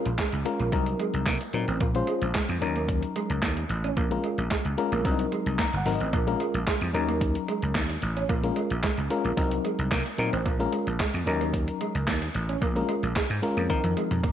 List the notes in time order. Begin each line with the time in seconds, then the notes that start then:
0.06 A#1, closed hi-hat
0.18 G#3, kick, snare, clap, closed hi-hat
0.32 C#2, closed hi-hat
0.45 G#3 C#4 F4 A#4, muted clean electric guitar stroke, closed hi-hat
0.60 A#1 A#3, closed hi-hat
0.72 C2 F#3 C4 D#4 A#4, kick, closed hi-hat
0.86 closed hi-hat
0.99 G#3, closed hi-hat
1.14 C2, closed hi-hat
1.26 C3 A#3, kick, snare, clap, closed hi-hat
1.41 muted clean electric guitar stroke, closed hi-hat
1.53 A#2 F#3 C4 D#4 A#4, closed hi-hat
1.68 A1 C4, closed hi-hat
1.80 A#1 A#3 F4 A#4, kick, closed hi-hat
1.95 G#3 C#4 F4 C5, muted clean electric guitar stroke, closed hi-hat
2.07 G#3, closed hi-hat
2.22 A#1, closed hi-hat
2.34 G#3, kick, snare, clap, closed hi-hat
2.48 F2, closed hi-hat
2.61 D#2 F#3 C#4 D#4 A#4, muted clean electric guitar stroke, closed hi-hat
2.76 A#3, closed hi-hat
2.89 kick, closed hi-hat
3.02 closed hi-hat
3.16 G#3, closed hi-hat
3.30 C#2, closed hi-hat
3.42 D#2 A#3, kick, snare, clap, closed hi-hat
3.57 muted clean electric guitar stroke, closed hi-hat
3.69 A1, closed hi-hat
3.84 C#4, closed hi-hat
3.97 A#1 A#3 F4 A#4, kick, closed hi-hat
4.11 G#3 C#4 F4 A#4, muted clean electric guitar stroke, closed hi-hat
4.24 G#3, closed hi-hat
4.38 A#1, closed hi-hat
4.51 G#3, kick, snare, clap, closed hi-hat
4.65 C#2, closed hi-hat
4.78 G#3 C#4 F4 A#4, muted clean electric guitar stroke, closed hi-hat
4.92 A#1 A#3, closed hi-hat
5.05 C2 F#3 C4 D4 A#4, kick, closed hi-hat
5.12 D#4
5.19 closed hi-hat
5.32 G#3, closed hi-hat
5.46 C2, closed hi-hat
5.59 A#3 A#5, kick, snare, clap, closed hi-hat
5.73 G1 F#5, muted clean electric guitar stroke, closed hi-hat
5.86 G#1 F#3 C4 D#4 A#4, open hi-hat
5.95 D#5
6.00 A1 C4, closed hi-hat
6.13 A#1 A#3 F4 A#4, kick, closed hi-hat
6.27 G#3 C#4 F4 A#4, muted clean electric guitar stroke, closed hi-hat
6.40 G#3, closed hi-hat
6.54 A#1, closed hi-hat
6.67 G#3, kick, snare, clap, closed hi-hat
6.81 F2, closed hi-hat
6.94 D#2 F#3 C#4 D#4 A#4, muted clean electric guitar stroke, closed hi-hat
7.09 A#3, closed hi-hat
7.21 kick, closed hi-hat
7.35 closed hi-hat
7.48 G#3, closed hi-hat
7.62 C#2, closed hi-hat
7.75 D#2 A#3, kick, snare, clap, closed hi-hat
7.90 muted clean electric guitar stroke, closed hi-hat
8.02 A1, closed hi-hat
8.17 C#4, closed hi-hat
8.29 A#1 A#3 F4 A#4, kick, closed hi-hat
8.43 G#3 C#4 F4 A#4, muted clean electric guitar stroke, closed hi-hat
8.56 G#3, closed hi-hat
8.70 A#1, closed hi-hat
8.83 G#3, kick, snare, clap, closed hi-hat
8.97 C#2, closed hi-hat
9.10 G#3 C#4 F4 A#4, muted clean electric guitar stroke, closed hi-hat
9.25 A#1 A#3, closed hi-hat
9.37 C2 F#3 C4 D#4 A#4, kick, closed hi-hat
9.51 closed hi-hat
9.65 G#3, closed hi-hat
9.79 C2, closed hi-hat
9.91 C3 A#3, kick, snare, clap, closed hi-hat
10.06 muted clean electric guitar stroke, closed hi-hat
10.18 A#2 F#3 C4 D#4 A#4, closed hi-hat
10.33 A1 C4, closed hi-hat
10.46 A#1 A#3 F4 A#4, kick, closed hi-hat
10.59 G#3 C#4 F4 A#4, muted clean electric guitar stroke, closed hi-hat
10.73 G#3, closed hi-hat
10.87 A#1, closed hi-hat
10.99 G#3, kick, snare, clap, closed hi-hat
11.14 F2, closed hi-hat
11.26 D#2 F#3 C#4 D#4 A#4, muted clean electric guitar stroke, closed hi-hat
11.41 A#3, closed hi-hat
11.54 kick, closed hi-hat
11.68 closed hi-hat
11.81 G#3, closed hi-hat
11.95 C#2, closed hi-hat
12.07 D#2 A#3, kick, snare, clap, closed hi-hat
12.22 muted clean electric guitar stroke, closed hi-hat
12.34 A1, closed hi-hat
12.49 C#4, closed hi-hat
12.61 A#1 A#3 F4 A#4, kick, closed hi-hat
12.76 G#3 C#4 F4 A#4, muted clean electric guitar stroke, closed hi-hat
12.89 G#3, closed hi-hat
13.03 A#1, closed hi-hat
13.16 G#3, kick, snare, clap, closed hi-hat
13.30 G#2, closed hi-hat
13.42 G#3 C#4 F4 A#4, muted clean electric guitar stroke, closed hi-hat
13.57 F2 A#3, closed hi-hat
13.69 F3 C4 D#4 A#4, kick, closed hi-hat, high tom
13.84 F2, closed hi-hat, high tom
13.97 G#3, closed hi-hat
14.11 F2, closed hi-hat, mid tom
14.24 A#3, kick, closed hi-hat, mid tom